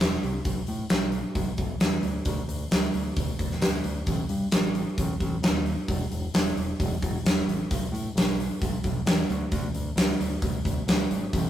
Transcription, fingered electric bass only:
0.00 0.15 E1 medium
0.23 0.38 C2 medium
0.45 0.61 B1 medium
0.68 0.83 A2 medium
0.90 1.21 B1 medium
1.35 1.51 B1 loud
1.58 1.74 B1 medium
1.81 1.96 E2 medium
2.03 2.18 D2 medium
2.26 2.41 D2 loud
2.48 2.64 D2 medium
2.71 2.87 D2 medium
2.94 3.09 D2 medium
3.17 3.32 D2 loud
3.39 3.54 D2 medium
3.61 3.77 D2 medium
3.85 4.00 D2 medium
4.07 4.23 A1 medium
4.30 4.45 G2 medium
4.52 4.83 A1 medium
4.98 5.13 A1 loud
5.20 5.36 A1 medium
5.42 5.74 D#2 medium
5.88 6.04 E1 loud
6.11 6.26 E1 medium
6.34 6.49 E1 medium
6.55 6.71 E1 medium
6.80 6.95 E1 loud
7.03 7.18 E1 medium
7.24 7.39 E1 medium
7.47 7.62 A1 medium
7.71 7.86 B1 loud
7.92 8.08 A2 medium
8.15 8.47 B1 medium
8.62 8.77 B1 loud
8.85 9.00 B1 medium
9.06 9.22 E2 medium
9.29 9.45 D2 loud
9.52 9.68 D2 loud
9.74 9.90 D2 medium
9.96 10.12 D2 medium
10.19 10.35 D2 medium
10.42 10.58 D2 medium
10.65 10.81 D2 medium
10.88 11.03 D2 medium
11.10 11.26 G#1 medium
11.33 11.49 A1 loud

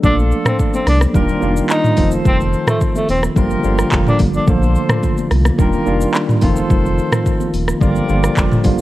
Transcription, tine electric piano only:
0.02 0.83 F3 medium
0.02 0.84 A3 medium
0.02 0.84 A#3 medium
0.02 0.84 D4 medium
0.02 0.85 A4 medium
1.13 1.36 D#3 loud
1.13 1.37 G3 medium
1.13 1.37 A#3 medium
1.13 1.37 D4 medium
1.13 1.38 F4 loud
1.41 1.82 D#3 medium
1.41 1.83 G3 medium
1.41 1.83 A#3 medium
1.41 1.83 D4 medium
1.41 1.84 F4 loud
1.96 2.86 D#3 medium
1.96 2.87 F3 medium
1.96 2.87 A3 medium
1.96 2.87 C4 medium
1.96 2.88 F4 medium
3.35 3.58 D3 loud
3.35 3.59 F3 medium
3.35 3.59 G3 medium
3.35 3.59 A#3 medium
3.35 3.60 F4 loud
3.63 4.05 D3 medium
3.63 4.05 F3 medium
3.63 4.05 G3 medium
3.63 4.06 A#3 medium
3.63 4.06 F4 loud
4.19 4.40 D3 medium
4.19 4.40 F3 medium
4.19 4.40 G3 medium
4.19 4.41 A#3 medium
4.19 4.41 D4 medium
4.46 5.28 D3 medium
4.46 5.28 F3 medium
4.46 5.29 A3 medium
4.46 5.29 A#3 medium
4.46 5.29 F4 medium
5.58 5.81 D#3 loud
5.58 5.81 G3 medium
5.58 5.81 A#3 medium
5.58 5.82 D4 medium
5.58 5.82 F4 loud
5.85 6.27 D#3 medium
5.85 6.27 G3 medium
5.85 6.27 A#3 medium
5.85 6.28 D4 medium
5.85 6.28 F4 loud
6.41 7.31 D#3 medium
6.41 7.31 F3 medium
6.41 7.31 A3 medium
6.41 7.32 C4 medium
6.41 7.32 F4 loud
7.80 8.03 D3 loud
7.80 8.03 F3 medium
7.80 8.03 G3 medium
7.80 8.04 A#3 medium
7.80 8.04 F4 loud
8.08 8.49 D3 medium
8.08 8.49 F3 medium
8.08 8.50 G3 medium
8.08 8.50 A#3 medium
8.08 8.50 F4 medium
8.63 8.81 D3 medium
8.63 8.81 F3 medium
8.63 8.81 G3 medium
8.63 8.81 A#3 medium
8.63 8.81 F4 medium

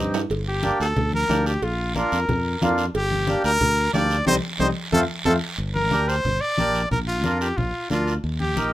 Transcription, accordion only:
0.00 0.20 C4 medium
0.00 0.20 D#4 medium
0.00 0.21 G4 medium
0.63 0.86 A#3 medium
0.63 0.86 D4 medium
0.63 0.86 G4 medium
1.29 1.52 A#3 medium
1.29 1.52 D4 medium
1.29 1.52 G4 medium
1.96 2.19 A#3 medium
1.96 2.19 D4 medium
1.96 2.19 F4 medium
2.62 2.85 A#3 medium
2.62 2.85 D4 medium
2.62 2.85 F4 medium
3.28 3.51 A#3 medium
3.28 3.51 D4 medium
3.28 3.51 G4 medium
3.94 4.17 A#3 medium
3.94 4.17 D4 medium
3.94 4.17 G4 medium
4.26 4.37 G3 loud
4.26 4.37 C4 loud
4.26 4.37 D#4 loud
4.59 4.70 G3 medium
4.59 4.70 C4 medium
4.59 4.70 D#4 medium
4.93 5.03 A3 medium
4.93 5.04 C4 medium
4.93 5.04 F4 medium
5.26 5.36 A3 medium
5.26 5.36 C4 medium
5.26 5.37 F4 medium
5.92 6.15 D4 medium
5.92 6.15 G4 medium
5.92 6.16 A#4 medium
6.58 6.82 D4 medium
6.58 6.82 G4 medium
6.58 6.82 A#4 medium
7.24 7.47 D4 medium
7.24 7.48 F4 medium
7.24 7.48 A#4 medium
7.90 8.14 D4 medium
7.90 8.14 F4 medium
7.90 8.14 A#4 medium
8.56 8.73 D#4 medium
8.56 8.73 G4 medium
8.56 8.73 A#4 medium

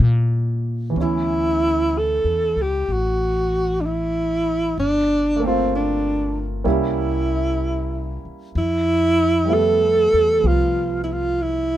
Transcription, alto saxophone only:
1.02 1.99 E4 medium
1.98 2.63 A4 medium
2.62 2.94 G4 medium
2.92 3.82 F#4 medium
3.81 3.88 D4 medium
3.86 4.79 E4 medium
4.79 5.47 D4 medium
5.45 5.73 C4 medium
5.76 6.46 D4 medium
6.69 8.22 E4 medium
8.58 9.55 E4 loud
9.54 10.48 A4 medium
10.47 11.00 F4 medium
11.04 11.14 E4 soft
11.13 11.44 F4 medium
11.42 11.77 E4 medium

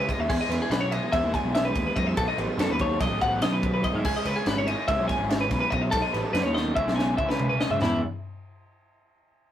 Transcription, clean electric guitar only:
0.09 0.20 D#5 medium
0.20 0.30 E5 medium
0.30 0.40 G#4 medium
0.41 0.49 D#5 medium
0.49 0.60 B4 medium
0.62 0.71 G#4 medium
0.71 0.81 B4 medium
0.81 0.92 C#5 medium
0.92 1.13 D#5 medium
1.12 1.34 E5 loud
1.34 1.54 G#5 medium
1.55 1.65 E5 medium
1.65 1.85 B4 medium
1.86 1.96 B4 medium
1.96 2.07 D#5 medium
2.07 2.17 E5 medium
2.17 2.28 A4 medium
2.28 2.38 D#5 medium
2.38 2.49 B4 medium
2.49 2.59 G#4 medium
2.61 2.71 A4 medium
2.71 2.80 B4 medium
2.81 3.01 C#5 medium
3.02 3.21 D#5 medium
3.22 3.42 F#5 medium
3.42 3.53 D#5 medium
3.52 3.72 B4 medium
3.74 3.84 B4 medium
3.84 3.96 D#5 medium
3.96 4.06 E5 medium
4.05 4.16 G#4 loud
4.17 4.26 D#5 medium
4.26 4.36 B4 medium
4.36 4.47 G#4 medium
4.47 4.57 B4 medium
4.58 4.67 C#5 medium
4.67 4.88 D#5 medium
4.88 5.08 E5 loud
5.08 5.30 G#5 medium
5.30 5.40 E5 medium
5.41 5.59 B4 medium
5.60 5.70 B4 medium
5.70 5.82 D#5 medium
5.82 5.92 E5 medium
5.91 6.02 A4 medium
6.02 6.13 D#5 medium
6.13 6.23 B4 medium
6.23 6.33 A4 medium
6.33 6.43 B4 medium
6.43 6.54 C#5 medium
6.54 6.75 D#5 medium
6.76 6.95 E5 medium
6.96 7.17 G#5 medium
7.17 7.28 E5 medium
7.29 7.48 B4 medium
7.49 7.60 B4 medium
7.61 7.71 D#5 medium
7.71 7.81 E5 medium
7.82 8.01 E4 medium

